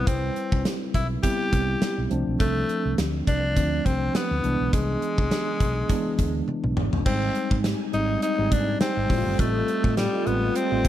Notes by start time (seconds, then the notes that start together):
Already playing: G3 C4 E4 B4
0.07 C2 C4, kick, closed hi-hat
0.36 closed hi-hat
0.52 C2, kick
0.65 snare, closed hi-hat
0.94 B1 E4, kick, closed hi-hat
1.23 G3 B3 C4 E4 G4, kick, closed hi-hat
1.53 C2, kick, closed hi-hat
1.82 snare, closed hi-hat
1.98 B1
2.10 C2 F3 A3 C4 D4, closed hi-hat
2.27 B1
2.40 C2 A3, kick, closed hi-hat
2.69 closed hi-hat
2.85 C2
2.98 D2, snare, closed hi-hat
3.27 C2 D4, kick, closed hi-hat
3.56 D2 F3 A3 C4 D4, kick, closed hi-hat
3.86 C2 C4, kick, closed hi-hat
4.15 B3, snare, closed hi-hat
4.31 D2
4.43 C2 E3 G#3 B3 D4, closed hi-hat
4.60 B1
4.73 C2 G#3, kick, closed hi-hat
5.02 closed hi-hat
5.18 C2, kick
5.31 snare, closed hi-hat
5.60 B1, kick, closed hi-hat
5.89 E3 G#3 B3 D4, kick, closed hi-hat
6.18 D2, kick, closed hi-hat
6.48 high tom
6.64 B1, mid tom
6.77 G#1, mid tom
6.93 F1, floor tom
7.05 G#1 G3 G#3 C4 D#4 D#5 G5 G#5, kick, crash
7.35 closed hi-hat
7.51 G#2, kick
7.64 snare, closed hi-hat
7.93 G#1 G3 G#3 C4 D#4, closed hi-hat
8.22 D#4, closed hi-hat
8.38 G#1 G3 G#3 C4 D#4
8.52 G#2 D4, kick, closed hi-hat
8.81 C4, snare, closed hi-hat
8.97 G#1
9.10 A1 G3 A3 C4 E4 F4 A4, kick, open hi-hat
9.17 F4
9.26 G1
9.39 A1 A3, kick, closed hi-hat
9.68 closed hi-hat
9.84 A2, kick
9.97 G3, snare, closed hi-hat
10.26 A1 G3 G#3 B3 C4 F4, closed hi-hat
10.33 A3
10.55 C4, closed hi-hat
10.71 A1 G3 A3 C4 F4
10.85 A2, kick, closed hi-hat